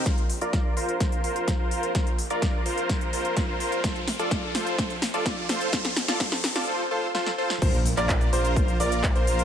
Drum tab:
CC |----------------|----------------|----------------|----------------|
HH |xxoxx-oxxxoxx-ox|xxoxx-oxxxoxx-ox|xxoxx-oxxxoxx-ox|xxoxx-ox--------|
SH |----------------|----------------|----------------|----------------|
CP |----------------|----------------|----------------|----------------|
SD |o---o---o---o---|o---o---o---o---|o-o-o-o-o-o-o-o-|oooooooo----oo-o|
BD |o---o---o---o---|o---o---o---o---|o---o---o---o---|o---o-----------|

CC |x---------------|
HH |xxoxxxoxxxoxxxox|
SH |xxxxxxxxxxxxxxxx|
CP |---xx-------x---|
SD |----------------|
BD |o---o---o---o---|